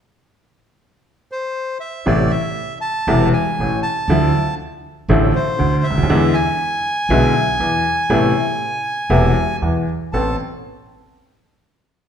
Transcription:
X:1
M:4/4
L:1/16
Q:1/4=119
K:Am
V:1 name="Bandoneon"
z8 z2 c4 e2 | d2 e4 a4 ^g4 a2- | a4 z6 c4 e2- | e2 ^g12- g2- |
^g12 z4 | a2 z12 z2 |]
V:2 name="Upright piano" clef=bass
z16 | [A,,,A,,C,E,A,E]2 z6 [E,,,E,,C,E,A,E]2 z2 [A,,,A,,]2 z2 | [D,,D,F,A,E]2 z6 [A,,,A,,D,F,A,E]2 z2 [D,,D,]2 z/2 ^C,,/2 D,,/2 ^D,,/2 | [E,,D,E,^G,B,E]2 z6 [B,,,B,,D,G,B,E]2 z2 [E,,E,]2 z2 |
[A,,,A,,C,A,B,E]2 z6 [E,,,E,,C,A,B,E]2 z2 [E,,E,]2 z2 | [A,,,B,CA]2 z12 z2 |]
V:3 name="Upright bass" clef=bass
z16 | A,,,3/2 z6 z/2 E,,,3/2 z2 z/2 A,,,3/2 z2 z/2 | D,,3/2 z6 z/2 A,,,3/2 z2 z/2 D,,3/2 z ^C,,/2 D,,/2 ^D,,/2 | E,,3/2 z6 z/2 B,,,3/2 z2 z/2 E,,3/2 z2 z/2 |
A,,,3/2 z6 z/2 E,,,3/2 z2 z/2 E,,3/2 z2 z/2 | A,,,2 z12 z2 |]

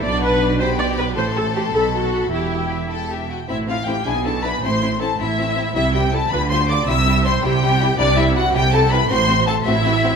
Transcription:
X:1
M:6/8
L:1/8
Q:3/8=107
K:Em
V:1 name="Violin section"
d f d b g b | c' a c' b a b | e g e g e g | [K:Am] e f g ^g a b |
c'2 a e3 | e g a b c' d' | e'2 c' g3 | [K:Clyd] d e f g a b |
c'2 a e3 |]
V:2 name="Viola section"
d B2 c d B | c A G A F2 | E3 z3 | [K:Am] E F G ^G A B |
c2 A E3 | E G A B c d | e2 c G3 | [K:Clyd] D E F G A B |
c2 A E3 |]
V:3 name="Violin section"
D3 G3 | A6 | G3 A G F | [K:Am] [CE] [CE] [CE] [DE] [DE] [DE] |
[CE] [CE] [CE] [CE] [CE] [CE] | [G,E] [G,E] [G,E] [G,F] [G,F] [G,F] | [G,E] [G,E] [G,E] [G,E] [G,E] [G,E] | [K:Clyd] [G,E] [G,E] [G,E] [G,E] [G,E] [G,E] |
[CF] [CF] [CF] [CF] [CF] [CF] |]
V:4 name="Cello section" clef=bass
B,,6 | A,,3 B,,3 | E,,4- E,, z | [K:Am] A,,3 B,,3 |
A,,3 A,,3 | C,3 D,3 | C,3 C,3 | [K:Clyd] C,3 C,3 |
A,,3 A,,3 |]
V:5 name="Double bass section" clef=bass
B,,,6 | A,,,3 B,,,3 | E,,,4- E,,, z | [K:Am] A,,,3 B,,,3 |
A,,,3 A,,,3 | C,,3 D,,3 | C,,3 C,,3 | [K:Clyd] C,,3 C,,3 |
A,,,3 A,,,3 |]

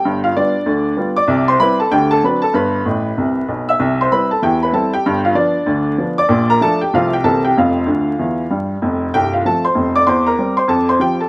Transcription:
X:1
M:4/4
L:1/8
Q:"Swing" 1/4=191
K:Gmix
V:1 name="Upright piano"
[Gg] [Ff] [Dd]4- [Dd] [dd']- | [dd'] [cc'] [Bb] [Aa] [Gg] [Aa] [Bb] [Aa] | [Bb]6- [Bb] [ee']- | [ee'] [cc'] [Bb] [Aa] [Gg] [Bb] [Aa] [Gg]- |
[Gg] [Ff] [Dd]4- [Dd] [dd']- | [K:F] [dd'] [Bb] [Aa] [Gg] [Ff] [Gg] [Aa] [Gg] | [Ff]6- [Ff] z | z2 [Gg] [Ff] [Aa] [cc']2 [dd'] |
[cc'] [Bb]2 [cc'] [Aa] [cc'] [Gg] [Aa] |]
V:2 name="Upright piano" clef=bass
[G,,,G,,]2 [G,B,F]2 [D,,D,]2 [G,B,F]2 | [C,,C,]2 [G,CE]2 [D,,D,]2 [^F,CD]2 | [G,,,G,,]2 [A,,,A,,]2 [C,,C,]2 [B,,,B,,]2 | [C,,C,]2 [G,CE]2 [E,,E,]2 [G,CE]2 |
[G,,,G,,]2 [F,B,]2 [D,,D,]2 [F,B,D]2 | [K:F] [B,,,B,,]2 [F,A,D]2 [C,,C,F,A,C]2 [C,,C,E,B,C]2 | [F,,,F,,]2 [D,,D,]2 [E,,E,]2 [G,,G,]2 | [F,,,F,,]2 [C,,,C,,]2 [F,A,C]2 [F,,,F,,]2 |
E,,2 [G,C]2 F,,2 [F,CF]2 |]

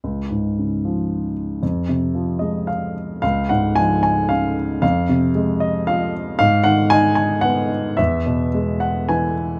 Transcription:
X:1
M:3/4
L:1/8
Q:1/4=113
K:Db
V:1 name="Grand piano"
z6 | z3 e f2 | f g a a f2 | f2 z e f2 |
f g a a g2 | =e2 z g ^g2 |]
V:2 name="Grand piano" clef=bass
D,, A,, D, F,3 | F,, C, F, A,3 | D,, A,, F,2 D,2 | F,, C, A,2 F,2 |
A,, E, E2 _C2 | =E,, =B,, ^G,2 =E,2 |]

